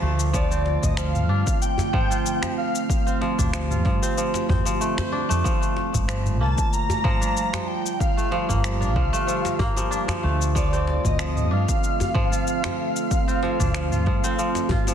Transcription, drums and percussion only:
0.20 cabasa
0.34 kick, cabasa
0.52 cabasa
0.66 djembe slap
0.83 kick, mid tom, cabasa
0.97 finger snap, cabasa
1.15 mid tom, cabasa
1.47 kick, cabasa
1.62 cabasa
1.78 djembe slap, djembe bass, cabasa
1.94 kick, mid tom
2.12 cabasa
2.26 cabasa
2.42 finger snap, djembe slap, djembe tone, cabasa
2.75 cabasa
2.90 kick, cabasa
3.07 cabasa
3.22 djembe slap
3.39 kick, mid tom, cabasa
3.54 finger snap, cabasa
3.71 mid tom, cabasa
3.85 kick, djembe tone
4.03 cabasa
4.18 cabasa
4.34 djembe slap, cabasa
4.49 kick, mid tom, djembe tone, djembe bass
4.66 djembe slap, cabasa
4.81 cabasa
4.98 finger snap, djembe tone, djembe bass, cabasa
5.31 cabasa
5.45 kick, cabasa
5.63 cabasa
5.77 djembe slap
5.94 kick, mid tom, cabasa
6.09 finger snap, cabasa
6.26 mid tom, cabasa
6.58 kick, cabasa
6.73 cabasa
6.90 djembe slap, djembe bass, cabasa
7.05 kick, mid tom
7.22 cabasa
7.37 cabasa
7.53 finger snap, djembe slap, djembe tone, cabasa
7.86 cabasa
8.00 kick, cabasa
8.18 cabasa
8.32 djembe slap
8.49 kick, mid tom, cabasa
8.64 finger snap, cabasa
8.82 mid tom, cabasa
8.96 kick
9.14 cabasa
9.29 cabasa
9.45 djembe slap, cabasa
9.59 kick, mid tom, djembe tone, djembe bass
9.77 djembe slap, cabasa
9.92 cabasa
10.08 finger snap, djembe tone, djembe bass, cabasa
10.42 cabasa
10.56 kick, cabasa
10.73 cabasa
10.87 djembe slap
11.05 kick, mid tom, cabasa
11.19 finger snap, cabasa
11.37 mid tom, cabasa
11.69 kick, cabasa
11.84 cabasa
12.00 djembe slap, djembe bass, cabasa
12.15 kick, mid tom
12.33 cabasa
12.47 cabasa
12.64 finger snap, djembe slap, djembe tone, cabasa
12.96 cabasa
13.11 kick, cabasa
13.29 cabasa
13.43 djembe slap
13.60 kick, mid tom, cabasa
13.74 finger snap, cabasa
13.92 mid tom, cabasa
14.06 kick, djembe slap
14.24 cabasa
14.39 cabasa
14.55 djembe slap, cabasa
14.69 kick, mid tom, djembe tone, djembe bass
14.87 djembe slap, cabasa

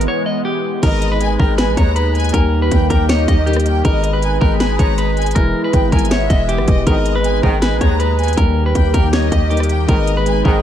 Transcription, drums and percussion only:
0.01 closed hi-hat
0.83 kick, closed hi-hat, crash
1.02 closed hi-hat
1.21 closed hi-hat
1.40 kick
1.58 snare, closed hi-hat
1.77 kick, closed hi-hat
1.96 closed hi-hat
2.15 closed hi-hat
2.20 closed hi-hat
2.24 closed hi-hat
2.29 closed hi-hat
2.34 kick, closed hi-hat
2.71 kick, closed hi-hat
2.90 kick, closed hi-hat
3.09 snare, closed hi-hat
3.28 kick, closed hi-hat
3.47 closed hi-hat
3.53 cross-stick, closed hi-hat
3.60 closed hi-hat
3.66 closed hi-hat
3.85 kick, closed hi-hat
4.04 closed hi-hat
4.22 closed hi-hat
4.41 kick
4.60 snare, closed hi-hat
4.79 kick, closed hi-hat
4.98 closed hi-hat
5.17 closed hi-hat
5.22 closed hi-hat
5.26 closed hi-hat
5.31 closed hi-hat
5.36 kick, closed hi-hat
5.73 kick, closed hi-hat
5.92 kick, closed hi-hat, open hi-hat
5.99 closed hi-hat
6.05 closed hi-hat
6.11 snare, closed hi-hat
6.30 kick, closed hi-hat
6.49 closed hi-hat
6.58 cross-stick
6.68 kick, closed hi-hat
6.87 kick, closed hi-hat
7.06 closed hi-hat
7.24 closed hi-hat
7.43 kick
7.62 snare, closed hi-hat
7.81 kick, closed hi-hat
8.00 closed hi-hat
8.19 closed hi-hat
8.23 closed hi-hat
8.28 closed hi-hat
8.33 closed hi-hat
8.38 kick, closed hi-hat
8.75 kick, closed hi-hat
8.94 kick, closed hi-hat
9.13 snare, closed hi-hat
9.32 kick, closed hi-hat
9.51 closed hi-hat
9.57 cross-stick, closed hi-hat
9.63 closed hi-hat
9.69 closed hi-hat
9.89 kick, closed hi-hat
10.07 closed hi-hat
10.26 closed hi-hat
10.45 kick

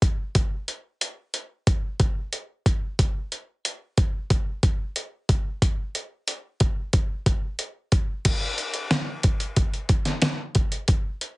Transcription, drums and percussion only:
0.02 kick, closed hi-hat
0.35 kick, closed hi-hat
0.68 closed hi-hat
1.01 closed hi-hat
1.34 closed hi-hat
1.67 kick, closed hi-hat
2.00 kick, closed hi-hat
2.33 closed hi-hat
2.66 kick, closed hi-hat
2.99 kick, closed hi-hat
3.32 closed hi-hat
3.65 closed hi-hat
3.98 kick, closed hi-hat
4.30 kick, closed hi-hat
4.63 kick, closed hi-hat
4.96 closed hi-hat
5.29 kick, closed hi-hat
5.62 kick, closed hi-hat
5.95 closed hi-hat
6.28 closed hi-hat
6.60 kick, closed hi-hat
6.93 kick, closed hi-hat
7.26 kick, closed hi-hat
7.59 closed hi-hat
7.92 kick, closed hi-hat
8.25 kick, closed hi-hat, crash
8.58 closed hi-hat
8.74 closed hi-hat
8.91 snare, closed hi-hat
9.23 kick, closed hi-hat
9.40 closed hi-hat
9.56 kick, closed hi-hat
9.74 closed hi-hat
9.89 kick, closed hi-hat
10.05 snare, closed hi-hat
10.22 snare, closed hi-hat
10.55 kick, closed hi-hat
10.72 closed hi-hat
10.88 kick, closed hi-hat
11.21 closed hi-hat

